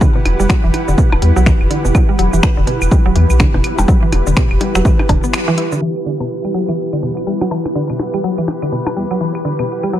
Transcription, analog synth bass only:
0.25 0.35 E1 loud
0.40 0.46 E1 medium
0.64 0.71 E1 loud
0.88 0.95 E1 medium
1.12 1.19 D1 loud
1.22 1.32 E2 medium
1.36 1.51 B1 medium
1.61 1.67 E1 medium
1.85 1.91 E1 medium
2.19 2.28 E1 loud
2.33 2.40 E1 medium
2.57 2.64 E1 medium
2.82 2.88 E1 medium
3.06 3.12 D1 loud
3.16 3.25 E2 loud
3.30 3.45 B1 medium
3.54 3.61 E1 medium
3.78 3.85 E1 medium
4.12 4.22 E1 loud
4.27 4.33 E1 medium
4.51 4.57 E1 loud
4.75 4.82 E1 medium
5.09 5.19 E1 loud
6.06 6.16 E1 medium
6.20 6.27 E1 medium
6.44 6.51 E1 medium
6.69 6.75 E1 medium
6.93 6.99 D1 medium
7.03 7.12 E2 medium
7.17 7.32 B1 medium
7.41 7.48 E1 medium
7.65 7.72 E1 medium
7.99 8.09 E1 loud
8.14 8.20 E1 medium
8.38 8.45 E1 medium
8.62 8.69 E1 medium
8.86 8.93 D1 medium
8.96 9.06 E2 medium
9.11 9.25 B1 medium
9.35 9.41 E1 medium
9.59 9.66 E1 medium
9.93 10.00 E1 medium

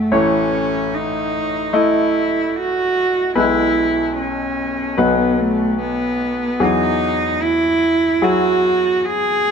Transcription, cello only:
0.00 0.15 A3 medium
0.14 0.96 C#4 medium
0.94 1.77 D#4 medium
1.75 2.58 E4 medium
2.56 3.36 F#4 medium
3.37 4.13 E4 medium
4.18 5.00 C#4 medium
4.99 5.42 B3 medium
5.40 5.80 A3 medium
5.80 6.64 B3 medium
6.63 7.44 D#4 medium
7.42 8.25 E4 medium
8.23 9.07 F#4 medium
9.05 9.51 G#4 medium

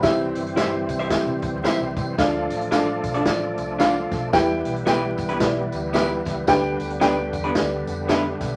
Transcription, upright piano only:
0.00 0.41 C4 loud
0.00 0.41 E4 loud
0.00 0.41 G4 loud
0.00 0.41 E5 loud
0.00 0.18 B5 medium
0.57 0.95 C4 medium
0.57 0.95 E4 medium
0.57 0.95 G4 medium
0.57 0.95 E5 loud
1.11 1.49 C4 medium
1.11 1.49 E4 medium
1.11 1.49 G4 medium
1.11 1.49 E5 medium
1.64 2.02 C4 medium
1.64 2.02 E4 medium
1.64 2.03 G4 medium
1.64 2.03 E5 medium
2.18 2.56 D4 loud
2.18 2.56 F4 loud
2.18 2.56 A4 loud
2.18 2.57 F5 loud
2.71 3.10 D4 loud
2.71 3.10 F4 medium
2.71 3.10 A4 medium
2.71 3.10 F5 loud
3.25 3.63 D4 medium
3.25 3.64 F4 medium
3.25 3.64 A4 medium
3.25 3.64 D5 loud
3.79 4.17 D4 medium
3.79 4.18 F4 medium
3.79 4.18 A4 medium
3.79 4.18 F5 loud
4.32 4.71 E4 loud
4.32 4.71 G4 loud
4.32 4.71 B4 loud
4.32 4.71 G5 loud
4.87 5.25 E4 medium
4.87 5.25 G4 medium
4.87 5.25 B4 medium
4.87 5.25 G5 loud
5.40 5.79 E4 medium
5.40 5.79 G4 medium
5.40 5.79 B4 medium
5.40 5.79 D5 medium
5.94 6.32 E4 medium
5.94 6.32 G4 medium
5.94 6.32 B4 medium
5.94 6.32 E5 loud
6.47 6.86 D4 loud
6.47 6.86 G4 loud
6.47 6.86 B4 loud
6.47 6.86 G5 loud
7.01 7.39 D4 medium
7.01 7.39 G4 medium
7.01 7.39 B4 medium
7.01 7.39 G5 loud
7.54 7.93 D4 medium
7.54 7.93 G4 medium
7.54 7.93 B4 medium
7.54 7.93 D5 medium
8.09 8.47 D4 medium
8.09 8.47 G4 medium
8.09 8.47 B4 medium
8.09 8.47 E5 medium

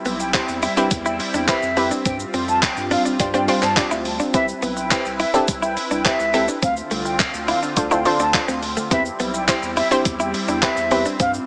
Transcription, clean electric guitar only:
0.06 0.16 B3 medium
0.20 muted clean electric guitar stroke soft
0.34 muted clean electric guitar stroke soft
0.63 0.73 E4 medium
0.77 0.88 D4 medium
1.06 1.16 E4 medium
1.20 muted clean electric guitar stroke soft
1.34 1.45 D4 medium
1.48 muted clean electric guitar stroke soft
1.77 1.88 C4 medium
1.91 2.02 D4 medium
2.06 2.16 C4 loud
2.34 2.45 C4 medium
2.48 muted clean electric guitar stroke soft
2.63 muted clean electric guitar stroke soft
2.91 3.02 D4 medium
3.05 3.16 D4 medium
3.34 3.45 C4 medium
3.48 muted clean electric guitar stroke soft
3.63 3.73 C4 medium
3.91 4.02 E4 medium
4.06 muted clean electric guitar stroke soft
4.20 4.30 D4 medium
4.34 4.45 C4 medium
4.63 4.73 B3 medium
4.77 muted clean electric guitar stroke soft
4.91 muted clean electric guitar stroke medium
5.20 5.30 E4 medium
5.34 5.45 D4 medium
5.62 5.73 E4 medium
5.77 muted clean electric guitar stroke soft
5.91 6.02 D4 medium
6.05 muted clean electric guitar stroke soft
6.34 6.45 C4 medium
6.48 6.59 D4 medium
6.62 6.73 C4 loud
6.91 7.02 A3 medium
7.05 muted clean electric guitar stroke soft
7.20 muted clean electric guitar stroke soft
7.48 7.59 E4 medium
7.63 7.73 D4 medium
7.91 8.02 E4 medium
8.06 muted clean electric guitar stroke soft
8.20 8.31 D4 medium
8.48 8.59 C4 medium
8.63 muted clean electric guitar stroke soft
8.77 8.88 A3 medium
8.91 9.02 C4 medium
9.20 9.31 B3 medium
9.34 muted clean electric guitar stroke soft
9.48 muted clean electric guitar stroke soft
9.77 9.88 E4 medium
9.91 10.02 D4 medium
10.20 10.31 E4 medium
10.34 muted clean electric guitar stroke soft
10.48 10.59 D4 medium
10.63 muted clean electric guitar stroke soft
10.91 11.02 C4 medium
11.06 11.16 D4 medium
11.20 11.31 C4 loud

